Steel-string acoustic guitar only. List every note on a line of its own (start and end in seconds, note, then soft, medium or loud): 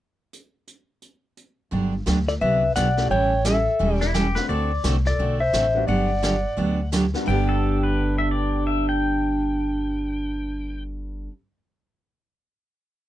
1.71 1.93 D3 medium
1.71 1.93 F#3 medium
1.71 1.93 B3 soft
1.71 1.93 D4 medium
1.71 1.94 G4 medium
2.06 2.17 D3 medium
2.06 2.18 F#3 medium
2.06 2.18 B3 medium
2.06 2.18 D4 medium
2.06 2.18 G4 medium
2.41 2.62 D3 soft
2.41 2.62 F#3 medium
2.41 2.62 B3 medium
2.41 2.63 D4 medium
2.41 2.63 G4 medium
2.76 2.87 D3 medium
2.76 2.87 F#3 medium
2.76 2.87 B3 medium
2.76 2.87 D4 medium
2.76 2.88 G4 medium
3.11 3.32 E3 medium
3.11 3.32 G3 medium
3.11 3.32 C#4 medium
3.11 3.32 E4 medium
3.11 3.32 A4 medium
3.45 3.56 E3 medium
3.45 3.57 G3 medium
3.45 3.57 C#4 medium
3.45 3.57 E4 medium
3.45 3.57 A4 medium
3.79 4.01 E3 medium
3.79 4.01 G3 medium
3.79 4.01 C#4 medium
3.79 4.01 E4 medium
3.79 4.01 A4 medium
4.14 4.26 E3 medium
4.14 4.26 G3 medium
4.14 4.26 C#4 medium
4.14 4.26 E4 medium
4.14 4.26 A4 medium
4.48 4.70 D3 soft
4.48 4.70 A3 medium
4.48 4.71 C4 soft
4.48 4.71 F#4 medium
4.48 4.71 A4 medium
4.84 4.95 D3 medium
4.84 4.95 A3 medium
4.84 4.96 C4 medium
4.84 4.96 F#4 medium
4.84 4.96 A4 medium
5.19 5.40 D3 medium
5.19 5.40 A3 medium
5.19 5.41 C4 medium
5.19 5.41 F#4 medium
5.19 5.41 A4 medium
5.53 5.65 D3 medium
5.53 5.65 A3 medium
5.53 5.65 C4 medium
5.53 5.65 F#4 medium
5.53 5.66 A4 medium
5.88 6.09 D3 soft
5.88 6.10 F#3 medium
5.88 6.10 B3 medium
5.88 6.10 D4 medium
5.88 6.10 G4 medium
6.23 6.34 D3 medium
6.23 6.34 F#3 medium
6.23 6.35 B3 medium
6.23 6.35 D4 medium
6.23 6.35 G4 medium
6.57 6.79 D3 medium
6.57 6.79 F#3 medium
6.57 6.79 B3 medium
6.57 6.79 D4 medium
6.57 6.79 G4 medium
6.92 7.04 D3 medium
6.92 7.04 F#3 medium
6.92 7.04 B3 medium
6.92 7.04 D4 medium
6.92 7.05 G4 medium
7.26 11.28 G2 medium
7.26 11.29 D3 medium
7.26 11.31 B3 medium
7.26 11.31 D4 medium
7.26 11.32 G4 medium